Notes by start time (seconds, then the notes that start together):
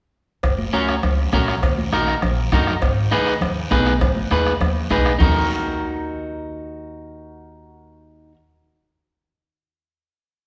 0.43 F#1, bombo low, bombo rim, cowbell, long guiro
0.58 high conga
0.73 C#2 C#4 F#4 A#4, bombo rim, high conga, short guiro
0.88 bombo rim, short guiro
1.03 C#2, bombo rim, cowbell, low conga, long guiro
1.33 A#1 C#4 F#4 A#4, bombo low, bombo rim, high conga, low timbale, short guiro
1.48 bombo rim, short guiro
1.63 D#2, bombo low, bombo rim, cowbell, long guiro
1.78 high conga
1.93 A#1 D#4 F#4 A#4, bombo rim, high conga, short guiro
2.07 bombo rim, short guiro
2.22 A#1, bombo rim, cowbell, low conga, long guiro
2.52 F#2 D#4 F#4 A#4, bombo low, bombo rim, high conga, low conga, low timbale, short guiro
2.67 bombo rim, short guiro
2.82 G#1, bombo low, bombo rim, cowbell, long guiro
3.11 D#4 G#4 B4, bombo rim, high conga, short guiro
3.26 bombo rim, short guiro
3.41 D#2, bombo rim, cowbell, low conga, long guiro
3.71 B1 D#4 G#4 B4, bombo low, bombo rim, high conga, low timbale, short guiro
3.86 bombo rim, short guiro
4.01 G#1, bombo low, bombo rim, cowbell, low conga, long guiro
4.16 high conga
4.31 D#2 D#4 G#4 B4, bombo rim, high conga, short guiro
4.46 bombo rim, short guiro
4.60 D#2, bombo rim, cowbell, low conga, long guiro
4.90 B1 D#4 G#4 B4, bombo low, bombo rim, high conga, short guiro
5.05 bombo rim, short guiro
5.19 D#2 D#4 F#4 A#4, bombo low, low conga, low timbale, long guiro